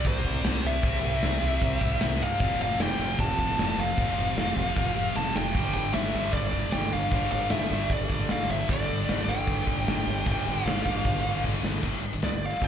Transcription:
Already playing: C3 G3 C4 E4 G4 D5
0.04 C2 C5, kick, open hi-hat
0.24 C2, kick
0.44 C2, snare, open hi-hat
0.64 C2 E5
0.83 C2 C3 G3 C4, kick, open hi-hat
0.87 E4
1.03 C2
1.13 snare
1.22 C2, snare, open hi-hat
1.43 C2
1.62 C2, kick, open hi-hat
1.81 C2, kick
2.00 C2 E5, snare, open hi-hat
2.21 G2 F5
2.40 F1 F2 C3 F3 A3 C4, kick, open hi-hat
2.60 F1 F5
2.71 snare
2.79 F1 G5, snare, open hi-hat
2.99 F1
3.19 F1 A5, kick, open hi-hat
3.39 F1, kick
3.59 F1, snare, open hi-hat
3.78 F1 F5
3.97 F1 F2 C3 F3 A3, kick, open hi-hat
4.02 C4
4.17 F1
4.29 snare
4.37 F1, snare, open hi-hat
4.57 F1, kick
4.76 F1, kick, open hi-hat
4.96 F1
5.15 F1 A5, snare
5.36 F1 G5, snare
5.53 G1 G2 D3 G3 D4 A4, kick, crash
5.58 B3 D4
5.74 G1 G5
5.93 G1 E5, snare, open hi-hat
6.13 G1 G2 D3 G3
6.32 G1 D5, kick, open hi-hat
6.53 G1, kick
6.72 G1 G5, snare, open hi-hat
6.93 G1 F5
7.10 G1 G2 D3 G3 B3, kick, open hi-hat
7.14 D4
7.32 G1 F5
7.42 snare
7.50 G1 E5, snare, open hi-hat
7.70 G1 G2 D3 G3
7.89 G1 D5, kick, open hi-hat
8.09 G1, kick
8.29 G1 F5, snare, open hi-hat
8.49 G1 E5
8.68 G1 G2 D3 G3 B3 D4 D5, kick, open hi-hat
8.89 G1
9.09 G1, snare, open hi-hat
9.27 G1 G2 D3 G3 G5
9.47 G1, kick, open hi-hat
9.67 G1, kick
9.88 G1, snare, open hi-hat
10.07 G1
10.25 G1 G2 D3 G3, kick, open hi-hat
10.29 G3 B3 D4
10.47 G1
10.57 snare
10.65 G1 F5, snare, open hi-hat
10.85 G1 G2 D3 G3, kick
11.05 G1, kick, open hi-hat
11.24 G1
11.44 G1, kick
11.63 G1, snare
11.82 G1 G2 D3 G3, kick, crash
12.02 muted distorted electric guitar stroke, muted overdriven electric guitar stroke, muted fingered electric bass stroke
12.13 G1 G2 D3
12.22 C#2 C#3 G#3 D5, snare, open hi-hat
12.32 G1 G2 D3
12.46 F5
12.50 muted distorted electric guitar stroke, muted overdriven electric guitar stroke, muted fingered electric bass stroke
12.60 F2 F3 C4, kick, open hi-hat
12.64 G5

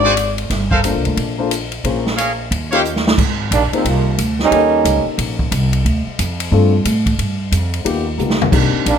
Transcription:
Already playing: G#1 D5
0.04 F#4 G#4 C5 D5
0.17 hi-hat pedal, ride
0.38 ride
0.50 G1, kick, snare, ride
0.71 A4 A#4 C5 F5, kick
0.84 A#3 D4 F4 A4 C5, hi-hat pedal, ride
0.95 C2
1.05 D2, ride
1.17 A#1, kick, ride
1.38 A#3 D4 F4 A4 C5
1.51 hi-hat pedal, ride
1.72 ride
1.84 A#1 A#3 C#4 F4 G#4 C5, kick, ride
2.06 snare
2.17 G#4 A#4 C#5 F5, hi-hat pedal, ride
2.51 D#2, kick, ride
2.71 A#3 C#4 F4 G4 C5 C#5 D#5 F5, ride
2.85 hi-hat pedal
2.96 snare
3.07 snare
3.18 G#1, kick, crash
3.51 A#1 D#3 G3 A#3 D4, kick, hi-hat pedal, ride
3.72 D#3 F3 A#3 C4 D#4 F4 G#4 C5, muted upright bass stroke, ride
3.85 C2 C3 D#3 F3 A#3, kick, ride
4.18 D2, kick, hi-hat pedal, ride
4.39 G3 A#3 C#4 D#4, snare
4.51 D#2 A#3 C#4 D#4 G4 A4, kick, ride
4.85 C#2, kick, hi-hat pedal, ride
5.06 muted upright bass stroke
5.18 A#1, kick, ride
5.39 kick
5.51 C2, kick, hi-hat pedal, ride
5.73 ride
5.85 D2, kick, ride
6.07 muted upright bass stroke
6.19 F2, kick, hi-hat pedal, ride
6.40 ride
6.51 G2 A3 C4 D4 F4 A4, kick
6.85 A2, kick, hi-hat pedal, ride
7.06 kick, ride
7.19 G2, kick, ride
7.52 F2, kick, hi-hat pedal, ride
7.74 ride
7.84 D#2 A#3 B3 D#4 F4 G4, kick, ride
8.18 C#2 A#3 B3 D#4 F4 G4, hi-hat pedal
8.30 snare
8.41 floor tom
8.52 C2 A#3 C4 D4 D#4 G4, kick, crash
8.73 muted upright bass stroke
8.86 A#1 D#3 G3 A#3 D4, kick, hi-hat pedal, ride

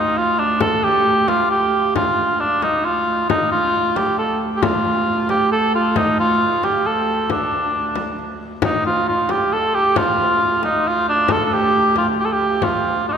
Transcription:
Already playing: D2 D#4
0.16 F4, frame drum
0.39 D4
0.60 A4, frame drum
0.84 G4, frame drum
1.06 frame drum
1.28 F4, frame drum
1.51 G4, frame drum
1.96 F4, frame drum
2.17 frame drum
2.40 D4, frame drum
2.62 D#4, frame drum
2.85 F4
3.29 D2 D#4, frame drum
3.52 F4, frame drum
3.74 frame drum
3.96 G4, frame drum
4.18 A4, frame drum
4.56 G4
4.63 F4, frame drum
4.85 frame drum
5.07 frame drum
5.29 G4, frame drum
5.51 A4, frame drum
5.75 F4
5.96 D#4, frame drum
6.19 F4, frame drum
6.41 frame drum
6.63 G4, frame drum
6.85 A4, frame drum
7.30 D4, frame drum
7.74 frame drum
7.96 frame drum
8.19 frame drum
8.62 D2 D#4, frame drum
8.84 F4, frame drum
9.07 F4, frame drum
9.29 G4, frame drum
9.52 A4, frame drum
9.75 G4
9.96 F4, frame drum
10.19 frame drum
10.41 frame drum
10.63 D#4, frame drum
10.84 F4, frame drum
11.09 D4
11.28 A4, frame drum
11.44 A4
11.51 G4, frame drum
11.73 frame drum
11.96 F4, frame drum
12.18 G4, frame drum
12.25 A4
12.33 G4
12.62 F4, frame drum
13.08 D4 D#4

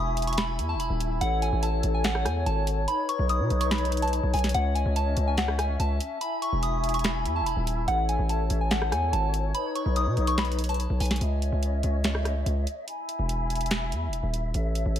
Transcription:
Already playing: E1 E4 E5 G#5 B5 D#6
0.17 closed hi-hat
0.22 closed hi-hat
0.27 C#6, closed hi-hat
0.33 closed hi-hat
0.38 B5, finger snap, snare, closed hi-hat
0.59 E2, closed hi-hat
0.69 A5
0.74 E1
0.79 B5, closed hi-hat
0.90 D#1
1.00 closed hi-hat
1.21 A1 A4 C#5 F#5, closed hi-hat
1.42 G#5, closed hi-hat
1.53 A1
1.63 A5, closed hi-hat
1.83 A1, closed hi-hat
1.94 G#5
2.04 F#5, finger snap, snare, closed hi-hat
2.15 cross-stick
2.25 E2 G#5, cross-stick, closed hi-hat
2.46 G#1 A5, closed hi-hat
2.67 closed hi-hat
2.88 D#4 B4 B5, closed hi-hat
3.09 C#6, closed hi-hat
3.19 B1
3.29 D#6, closed hi-hat
3.40 B2
3.50 B1, closed hi-hat
3.61 C#6, closed hi-hat
3.71 B5, finger snap, snare, closed hi-hat
3.78 closed hi-hat
3.85 closed hi-hat
3.92 closed hi-hat
3.97 closed hi-hat
4.02 A5, closed hi-hat
4.08 closed hi-hat
4.13 closed hi-hat
4.23 B1
4.34 B1 G#5, closed hi-hat, open hi-hat
4.39 closed hi-hat
4.44 snare, closed hi-hat
4.49 closed hi-hat
4.54 C#2 C#4 D#5 E5 F#5, closed hi-hat
4.75 G#5, closed hi-hat
4.86 C#2
4.96 A5, closed hi-hat
5.17 C#2, closed hi-hat
5.27 G#5
5.38 F#5, finger snap, snare, closed hi-hat
5.48 cross-stick
5.59 G#5, cross-stick, closed hi-hat
5.79 C#2 A5, closed hi-hat
6.00 closed hi-hat
6.21 E4 G#5 B5, closed hi-hat
6.42 C#6, closed hi-hat
6.52 E1
6.63 D#6, closed hi-hat
6.84 closed hi-hat
6.89 closed hi-hat
6.94 C#6, closed hi-hat
6.99 closed hi-hat
7.04 B5, finger snap, snare, closed hi-hat
7.25 E2, closed hi-hat
7.36 A5
7.41 E1
7.46 B5, closed hi-hat
7.57 D#1
7.67 closed hi-hat
7.88 A1 A4 C#5 F#5, closed hi-hat
8.09 G#5, closed hi-hat
8.19 A1
8.29 A5, closed hi-hat
8.50 A1, closed hi-hat
8.61 G#5
8.71 F#5, finger snap, snare, closed hi-hat
8.82 cross-stick
8.92 E2 G#5, cross-stick, closed hi-hat
9.13 G#1 A5, closed hi-hat
9.34 closed hi-hat
9.54 D#4 B4 B5, closed hi-hat
9.75 C#6, closed hi-hat
9.86 B1
9.96 D#6, closed hi-hat
10.07 B2
10.17 B1, closed hi-hat
10.27 C#6, closed hi-hat
10.38 B5, finger snap, snare, closed hi-hat
10.45 closed hi-hat
10.52 closed hi-hat
10.59 closed hi-hat
10.64 closed hi-hat
10.69 A5, closed hi-hat
10.74 closed hi-hat
10.80 closed hi-hat
10.90 B1
11.00 B1 G#5, closed hi-hat, open hi-hat
11.06 closed hi-hat
11.11 snare, closed hi-hat
11.16 closed hi-hat
11.21 C#2 C#4 C#5 D#5 E5, closed hi-hat
11.42 closed hi-hat
11.52 C#2
11.63 closed hi-hat
11.83 C#2, closed hi-hat
12.04 finger snap, snare, closed hi-hat
12.15 cross-stick
12.25 cross-stick, closed hi-hat
12.46 C#2, closed hi-hat
12.67 closed hi-hat
12.88 E4 E5 G#5 B5, closed hi-hat
13.09 closed hi-hat
13.19 E1
13.29 closed hi-hat
13.50 closed hi-hat
13.55 closed hi-hat
13.61 closed hi-hat
13.66 closed hi-hat
13.71 finger snap, snare, closed hi-hat
13.92 E2, closed hi-hat
14.08 E1
14.13 closed hi-hat
14.23 D#1
14.34 closed hi-hat
14.54 A1 A4 C#5, closed hi-hat
14.75 closed hi-hat
14.86 A1
14.96 closed hi-hat

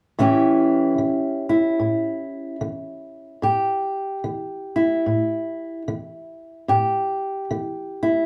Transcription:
0.19 A2 E3 C#4 E4 G4
0.98 E3
1.49 E4
1.80 A2
2.61 E3
3.42 A2 G4
4.24 E3
4.76 E4
5.06 A2
5.88 E3
6.68 A2 G4
7.51 E3
8.03 E4

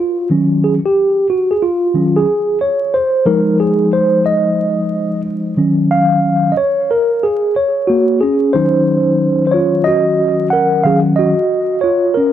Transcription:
Already playing: F4
0.30 D#3 F#3 C#4
0.64 G#4
0.85 G4
1.30 F#4
1.51 G#4
1.63 F4
1.94 D#3 F#3 C#4
2.16 G#4
2.61 C#5
2.94 C5
3.26 F3 G#3 D#4 A#4
3.60 G#4
3.93 C5
4.26 D#5
5.57 D#3 F#3 C#4
5.91 F5
6.52 D#5
6.57 C#5
6.91 A#4
7.23 G#4
7.56 C#5
7.87 A#3 F#4
8.21 C#4 G#4
8.53 D#3 F#3 C#4 D#4 C5
9.47 C5
9.51 F4 C#5
9.84 F#4 D#5
10.50 A#4 F#5
10.84 D#3 F#3 C#4 G#4 F5
11.16 F#4 D#5
11.81 F4 C#5
12.14 C#4 A#4

